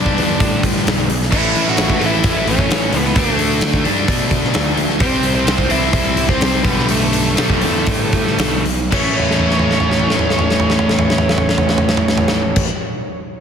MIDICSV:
0, 0, Header, 1, 5, 480
1, 0, Start_track
1, 0, Tempo, 460476
1, 1384, Time_signature, 4, 2, 24, 8
1, 5704, Tempo, 476190
1, 7624, Tempo, 515907
1, 9064, Tempo, 540054
1, 13044, End_track
2, 0, Start_track
2, 0, Title_t, "Lead electric guitar"
2, 0, Program_c, 0, 29
2, 0, Note_on_c, 0, 62, 80
2, 629, Note_off_c, 0, 62, 0
2, 1376, Note_on_c, 0, 64, 112
2, 1751, Note_off_c, 0, 64, 0
2, 1758, Note_on_c, 0, 66, 104
2, 2087, Note_off_c, 0, 66, 0
2, 2148, Note_on_c, 0, 64, 116
2, 2574, Note_off_c, 0, 64, 0
2, 2599, Note_on_c, 0, 61, 95
2, 3067, Note_on_c, 0, 59, 89
2, 3086, Note_off_c, 0, 61, 0
2, 3289, Note_off_c, 0, 59, 0
2, 3335, Note_on_c, 0, 57, 85
2, 3997, Note_off_c, 0, 57, 0
2, 5224, Note_on_c, 0, 60, 108
2, 5559, Note_off_c, 0, 60, 0
2, 5574, Note_on_c, 0, 60, 102
2, 5940, Note_on_c, 0, 64, 113
2, 5944, Note_off_c, 0, 60, 0
2, 6158, Note_off_c, 0, 64, 0
2, 6173, Note_on_c, 0, 64, 110
2, 6504, Note_off_c, 0, 64, 0
2, 6533, Note_on_c, 0, 60, 102
2, 6877, Note_off_c, 0, 60, 0
2, 6881, Note_on_c, 0, 59, 101
2, 7110, Note_off_c, 0, 59, 0
2, 7146, Note_on_c, 0, 57, 91
2, 8785, Note_off_c, 0, 57, 0
2, 9072, Note_on_c, 0, 61, 91
2, 12367, Note_off_c, 0, 61, 0
2, 13044, End_track
3, 0, Start_track
3, 0, Title_t, "Overdriven electric guitar"
3, 0, Program_c, 1, 29
3, 0, Note_on_c, 1, 43, 84
3, 0, Note_on_c, 1, 50, 85
3, 0, Note_on_c, 1, 55, 101
3, 1122, Note_off_c, 1, 43, 0
3, 1131, Note_off_c, 1, 50, 0
3, 1138, Note_off_c, 1, 55, 0
3, 1365, Note_on_c, 1, 45, 98
3, 1380, Note_on_c, 1, 52, 96
3, 1392, Note_on_c, 1, 57, 104
3, 2071, Note_off_c, 1, 57, 0
3, 2076, Note_on_c, 1, 57, 86
3, 2080, Note_off_c, 1, 45, 0
3, 2082, Note_off_c, 1, 52, 0
3, 2094, Note_on_c, 1, 52, 85
3, 2104, Note_on_c, 1, 45, 70
3, 3275, Note_off_c, 1, 57, 0
3, 3276, Note_off_c, 1, 45, 0
3, 3281, Note_on_c, 1, 50, 99
3, 3285, Note_off_c, 1, 52, 0
3, 3296, Note_on_c, 1, 57, 100
3, 3312, Note_on_c, 1, 62, 108
3, 3988, Note_off_c, 1, 62, 0
3, 3998, Note_off_c, 1, 50, 0
3, 4001, Note_on_c, 1, 62, 92
3, 4006, Note_off_c, 1, 57, 0
3, 4018, Note_on_c, 1, 57, 90
3, 4032, Note_on_c, 1, 50, 68
3, 5197, Note_off_c, 1, 62, 0
3, 5199, Note_off_c, 1, 50, 0
3, 5203, Note_on_c, 1, 48, 93
3, 5206, Note_off_c, 1, 57, 0
3, 5220, Note_on_c, 1, 55, 95
3, 5235, Note_on_c, 1, 60, 108
3, 5914, Note_off_c, 1, 48, 0
3, 5920, Note_off_c, 1, 60, 0
3, 5932, Note_on_c, 1, 60, 89
3, 5943, Note_off_c, 1, 55, 0
3, 5947, Note_on_c, 1, 55, 76
3, 5959, Note_on_c, 1, 48, 76
3, 6871, Note_off_c, 1, 60, 0
3, 6876, Note_on_c, 1, 43, 99
3, 6878, Note_off_c, 1, 55, 0
3, 6884, Note_off_c, 1, 48, 0
3, 6892, Note_on_c, 1, 50, 110
3, 6902, Note_on_c, 1, 55, 108
3, 7603, Note_off_c, 1, 43, 0
3, 7611, Note_off_c, 1, 50, 0
3, 7614, Note_on_c, 1, 43, 81
3, 7616, Note_off_c, 1, 55, 0
3, 7631, Note_on_c, 1, 50, 87
3, 7637, Note_on_c, 1, 55, 89
3, 8796, Note_off_c, 1, 43, 0
3, 8804, Note_off_c, 1, 50, 0
3, 8806, Note_off_c, 1, 55, 0
3, 9049, Note_on_c, 1, 45, 102
3, 9072, Note_on_c, 1, 52, 108
3, 9085, Note_on_c, 1, 57, 109
3, 12391, Note_off_c, 1, 45, 0
3, 12402, Note_off_c, 1, 52, 0
3, 12409, Note_off_c, 1, 57, 0
3, 13044, End_track
4, 0, Start_track
4, 0, Title_t, "Picked electric bass"
4, 0, Program_c, 2, 34
4, 0, Note_on_c, 2, 35, 90
4, 181, Note_off_c, 2, 35, 0
4, 193, Note_on_c, 2, 40, 93
4, 413, Note_off_c, 2, 40, 0
4, 419, Note_on_c, 2, 45, 98
4, 887, Note_off_c, 2, 45, 0
4, 908, Note_on_c, 2, 35, 101
4, 1139, Note_off_c, 2, 35, 0
4, 1144, Note_on_c, 2, 35, 100
4, 1374, Note_off_c, 2, 35, 0
4, 1380, Note_on_c, 2, 33, 96
4, 1609, Note_off_c, 2, 33, 0
4, 1615, Note_on_c, 2, 33, 90
4, 1852, Note_off_c, 2, 33, 0
4, 1857, Note_on_c, 2, 33, 92
4, 2093, Note_off_c, 2, 33, 0
4, 2108, Note_on_c, 2, 33, 95
4, 2326, Note_off_c, 2, 33, 0
4, 2333, Note_on_c, 2, 33, 101
4, 2571, Note_off_c, 2, 33, 0
4, 2576, Note_on_c, 2, 33, 91
4, 2802, Note_off_c, 2, 33, 0
4, 2808, Note_on_c, 2, 33, 109
4, 3040, Note_off_c, 2, 33, 0
4, 3046, Note_on_c, 2, 37, 94
4, 3287, Note_off_c, 2, 37, 0
4, 3294, Note_on_c, 2, 38, 106
4, 3764, Note_off_c, 2, 38, 0
4, 3769, Note_on_c, 2, 38, 87
4, 4008, Note_off_c, 2, 38, 0
4, 4019, Note_on_c, 2, 43, 97
4, 4254, Note_off_c, 2, 43, 0
4, 4259, Note_on_c, 2, 47, 100
4, 4726, Note_off_c, 2, 47, 0
4, 4742, Note_on_c, 2, 38, 103
4, 4969, Note_off_c, 2, 38, 0
4, 4975, Note_on_c, 2, 38, 100
4, 5211, Note_off_c, 2, 38, 0
4, 5216, Note_on_c, 2, 36, 103
4, 5444, Note_off_c, 2, 36, 0
4, 5451, Note_on_c, 2, 36, 90
4, 5684, Note_off_c, 2, 36, 0
4, 5690, Note_on_c, 2, 36, 96
4, 5915, Note_off_c, 2, 36, 0
4, 5921, Note_on_c, 2, 36, 99
4, 6157, Note_off_c, 2, 36, 0
4, 6167, Note_on_c, 2, 36, 102
4, 6399, Note_off_c, 2, 36, 0
4, 6411, Note_on_c, 2, 36, 95
4, 6634, Note_off_c, 2, 36, 0
4, 6640, Note_on_c, 2, 36, 103
4, 6877, Note_off_c, 2, 36, 0
4, 6888, Note_on_c, 2, 35, 94
4, 7123, Note_off_c, 2, 35, 0
4, 7134, Note_on_c, 2, 35, 94
4, 7610, Note_off_c, 2, 35, 0
4, 7630, Note_on_c, 2, 35, 92
4, 7851, Note_off_c, 2, 35, 0
4, 7860, Note_on_c, 2, 40, 94
4, 8078, Note_off_c, 2, 40, 0
4, 8083, Note_on_c, 2, 45, 100
4, 8551, Note_off_c, 2, 45, 0
4, 8565, Note_on_c, 2, 35, 108
4, 8805, Note_off_c, 2, 35, 0
4, 8817, Note_on_c, 2, 35, 96
4, 9058, Note_off_c, 2, 35, 0
4, 9065, Note_on_c, 2, 33, 103
4, 12363, Note_off_c, 2, 33, 0
4, 13044, End_track
5, 0, Start_track
5, 0, Title_t, "Drums"
5, 63, Note_on_c, 9, 36, 88
5, 167, Note_off_c, 9, 36, 0
5, 186, Note_on_c, 9, 46, 71
5, 291, Note_off_c, 9, 46, 0
5, 421, Note_on_c, 9, 36, 127
5, 421, Note_on_c, 9, 46, 91
5, 525, Note_off_c, 9, 36, 0
5, 525, Note_off_c, 9, 46, 0
5, 661, Note_on_c, 9, 36, 84
5, 661, Note_on_c, 9, 46, 65
5, 765, Note_off_c, 9, 36, 0
5, 765, Note_off_c, 9, 46, 0
5, 795, Note_on_c, 9, 38, 34
5, 899, Note_off_c, 9, 38, 0
5, 907, Note_on_c, 9, 46, 92
5, 918, Note_on_c, 9, 38, 115
5, 1011, Note_off_c, 9, 46, 0
5, 1023, Note_off_c, 9, 38, 0
5, 1143, Note_on_c, 9, 46, 68
5, 1247, Note_off_c, 9, 46, 0
5, 1274, Note_on_c, 9, 38, 38
5, 1377, Note_on_c, 9, 49, 115
5, 1379, Note_off_c, 9, 38, 0
5, 1379, Note_on_c, 9, 36, 126
5, 1482, Note_off_c, 9, 49, 0
5, 1484, Note_off_c, 9, 36, 0
5, 1617, Note_on_c, 9, 46, 65
5, 1721, Note_off_c, 9, 46, 0
5, 1743, Note_on_c, 9, 38, 36
5, 1846, Note_on_c, 9, 46, 92
5, 1847, Note_off_c, 9, 38, 0
5, 1857, Note_on_c, 9, 38, 115
5, 1950, Note_off_c, 9, 46, 0
5, 1961, Note_off_c, 9, 38, 0
5, 1976, Note_on_c, 9, 36, 91
5, 2080, Note_off_c, 9, 36, 0
5, 2099, Note_on_c, 9, 46, 71
5, 2203, Note_off_c, 9, 46, 0
5, 2331, Note_on_c, 9, 46, 94
5, 2336, Note_on_c, 9, 36, 117
5, 2436, Note_off_c, 9, 46, 0
5, 2440, Note_off_c, 9, 36, 0
5, 2580, Note_on_c, 9, 46, 70
5, 2684, Note_off_c, 9, 46, 0
5, 2697, Note_on_c, 9, 36, 76
5, 2801, Note_off_c, 9, 36, 0
5, 2821, Note_on_c, 9, 46, 98
5, 2832, Note_on_c, 9, 38, 126
5, 2925, Note_off_c, 9, 46, 0
5, 2937, Note_off_c, 9, 38, 0
5, 3050, Note_on_c, 9, 46, 74
5, 3154, Note_off_c, 9, 46, 0
5, 3181, Note_on_c, 9, 38, 36
5, 3285, Note_off_c, 9, 38, 0
5, 3291, Note_on_c, 9, 46, 96
5, 3293, Note_on_c, 9, 36, 127
5, 3395, Note_off_c, 9, 46, 0
5, 3398, Note_off_c, 9, 36, 0
5, 3532, Note_on_c, 9, 46, 76
5, 3637, Note_off_c, 9, 46, 0
5, 3765, Note_on_c, 9, 46, 100
5, 3776, Note_on_c, 9, 38, 121
5, 3869, Note_off_c, 9, 46, 0
5, 3880, Note_off_c, 9, 38, 0
5, 3893, Note_on_c, 9, 36, 84
5, 3998, Note_off_c, 9, 36, 0
5, 4015, Note_on_c, 9, 46, 77
5, 4119, Note_off_c, 9, 46, 0
5, 4256, Note_on_c, 9, 36, 121
5, 4258, Note_on_c, 9, 46, 98
5, 4360, Note_off_c, 9, 36, 0
5, 4362, Note_off_c, 9, 46, 0
5, 4491, Note_on_c, 9, 46, 73
5, 4494, Note_on_c, 9, 36, 82
5, 4596, Note_off_c, 9, 46, 0
5, 4598, Note_off_c, 9, 36, 0
5, 4628, Note_on_c, 9, 38, 36
5, 4731, Note_on_c, 9, 46, 91
5, 4732, Note_off_c, 9, 38, 0
5, 4742, Note_on_c, 9, 38, 127
5, 4835, Note_off_c, 9, 46, 0
5, 4847, Note_off_c, 9, 38, 0
5, 4976, Note_on_c, 9, 46, 72
5, 5081, Note_off_c, 9, 46, 0
5, 5100, Note_on_c, 9, 38, 37
5, 5204, Note_off_c, 9, 38, 0
5, 5214, Note_on_c, 9, 46, 95
5, 5216, Note_on_c, 9, 36, 127
5, 5318, Note_off_c, 9, 46, 0
5, 5320, Note_off_c, 9, 36, 0
5, 5452, Note_on_c, 9, 46, 70
5, 5556, Note_off_c, 9, 46, 0
5, 5702, Note_on_c, 9, 46, 91
5, 5713, Note_on_c, 9, 38, 119
5, 5803, Note_off_c, 9, 46, 0
5, 5814, Note_off_c, 9, 38, 0
5, 5814, Note_on_c, 9, 36, 88
5, 5915, Note_off_c, 9, 36, 0
5, 5933, Note_on_c, 9, 46, 69
5, 6034, Note_off_c, 9, 46, 0
5, 6166, Note_on_c, 9, 46, 90
5, 6168, Note_on_c, 9, 36, 117
5, 6267, Note_off_c, 9, 46, 0
5, 6269, Note_off_c, 9, 36, 0
5, 6407, Note_on_c, 9, 46, 67
5, 6508, Note_off_c, 9, 46, 0
5, 6526, Note_on_c, 9, 36, 74
5, 6537, Note_on_c, 9, 38, 33
5, 6627, Note_off_c, 9, 36, 0
5, 6637, Note_off_c, 9, 38, 0
5, 6650, Note_on_c, 9, 46, 94
5, 6661, Note_on_c, 9, 38, 116
5, 6751, Note_off_c, 9, 46, 0
5, 6762, Note_off_c, 9, 38, 0
5, 6886, Note_on_c, 9, 36, 112
5, 6887, Note_on_c, 9, 46, 70
5, 6987, Note_off_c, 9, 36, 0
5, 6988, Note_off_c, 9, 46, 0
5, 7030, Note_on_c, 9, 38, 36
5, 7130, Note_off_c, 9, 38, 0
5, 7130, Note_on_c, 9, 46, 96
5, 7231, Note_off_c, 9, 46, 0
5, 7375, Note_on_c, 9, 46, 77
5, 7476, Note_off_c, 9, 46, 0
5, 7619, Note_on_c, 9, 46, 95
5, 7630, Note_on_c, 9, 38, 117
5, 7712, Note_off_c, 9, 46, 0
5, 7723, Note_off_c, 9, 38, 0
5, 7735, Note_on_c, 9, 36, 85
5, 7828, Note_off_c, 9, 36, 0
5, 7846, Note_on_c, 9, 46, 78
5, 7939, Note_off_c, 9, 46, 0
5, 8079, Note_on_c, 9, 46, 97
5, 8085, Note_on_c, 9, 36, 123
5, 8172, Note_off_c, 9, 46, 0
5, 8178, Note_off_c, 9, 36, 0
5, 8321, Note_on_c, 9, 46, 71
5, 8324, Note_on_c, 9, 36, 84
5, 8414, Note_off_c, 9, 46, 0
5, 8417, Note_off_c, 9, 36, 0
5, 8455, Note_on_c, 9, 38, 35
5, 8548, Note_off_c, 9, 38, 0
5, 8563, Note_on_c, 9, 46, 101
5, 8573, Note_on_c, 9, 38, 119
5, 8656, Note_off_c, 9, 46, 0
5, 8666, Note_off_c, 9, 38, 0
5, 8813, Note_on_c, 9, 46, 73
5, 8907, Note_off_c, 9, 46, 0
5, 9063, Note_on_c, 9, 36, 115
5, 9063, Note_on_c, 9, 57, 103
5, 9152, Note_off_c, 9, 36, 0
5, 9152, Note_off_c, 9, 57, 0
5, 9304, Note_on_c, 9, 43, 50
5, 9393, Note_off_c, 9, 43, 0
5, 9404, Note_on_c, 9, 38, 52
5, 9480, Note_on_c, 9, 43, 55
5, 9493, Note_off_c, 9, 38, 0
5, 9569, Note_off_c, 9, 43, 0
5, 9579, Note_on_c, 9, 38, 52
5, 9659, Note_on_c, 9, 43, 56
5, 9668, Note_off_c, 9, 38, 0
5, 9748, Note_off_c, 9, 43, 0
5, 9761, Note_on_c, 9, 38, 60
5, 9844, Note_on_c, 9, 43, 61
5, 9850, Note_off_c, 9, 38, 0
5, 9933, Note_off_c, 9, 43, 0
5, 9944, Note_on_c, 9, 38, 62
5, 10014, Note_on_c, 9, 43, 60
5, 10033, Note_off_c, 9, 38, 0
5, 10103, Note_off_c, 9, 43, 0
5, 10111, Note_on_c, 9, 38, 69
5, 10190, Note_on_c, 9, 43, 65
5, 10200, Note_off_c, 9, 38, 0
5, 10279, Note_off_c, 9, 43, 0
5, 10290, Note_on_c, 9, 38, 63
5, 10365, Note_on_c, 9, 43, 64
5, 10378, Note_off_c, 9, 38, 0
5, 10454, Note_off_c, 9, 43, 0
5, 10468, Note_on_c, 9, 38, 67
5, 10550, Note_on_c, 9, 43, 73
5, 10557, Note_off_c, 9, 38, 0
5, 10639, Note_off_c, 9, 43, 0
5, 10640, Note_on_c, 9, 38, 72
5, 10721, Note_on_c, 9, 43, 81
5, 10729, Note_off_c, 9, 38, 0
5, 10810, Note_off_c, 9, 43, 0
5, 10815, Note_on_c, 9, 38, 76
5, 10897, Note_on_c, 9, 43, 82
5, 10904, Note_off_c, 9, 38, 0
5, 10986, Note_off_c, 9, 43, 0
5, 10998, Note_on_c, 9, 38, 85
5, 11071, Note_on_c, 9, 43, 84
5, 11087, Note_off_c, 9, 38, 0
5, 11160, Note_off_c, 9, 43, 0
5, 11169, Note_on_c, 9, 38, 87
5, 11245, Note_on_c, 9, 43, 88
5, 11258, Note_off_c, 9, 38, 0
5, 11334, Note_off_c, 9, 43, 0
5, 11344, Note_on_c, 9, 38, 90
5, 11423, Note_on_c, 9, 43, 90
5, 11433, Note_off_c, 9, 38, 0
5, 11512, Note_off_c, 9, 43, 0
5, 11521, Note_on_c, 9, 38, 84
5, 11601, Note_on_c, 9, 43, 96
5, 11610, Note_off_c, 9, 38, 0
5, 11690, Note_off_c, 9, 43, 0
5, 11698, Note_on_c, 9, 38, 103
5, 11773, Note_on_c, 9, 43, 93
5, 11787, Note_off_c, 9, 38, 0
5, 11862, Note_off_c, 9, 43, 0
5, 11872, Note_on_c, 9, 38, 97
5, 11953, Note_on_c, 9, 43, 96
5, 11961, Note_off_c, 9, 38, 0
5, 12042, Note_off_c, 9, 43, 0
5, 12047, Note_on_c, 9, 38, 101
5, 12136, Note_off_c, 9, 38, 0
5, 12294, Note_on_c, 9, 57, 104
5, 12299, Note_on_c, 9, 36, 117
5, 12383, Note_off_c, 9, 57, 0
5, 12388, Note_off_c, 9, 36, 0
5, 13044, End_track
0, 0, End_of_file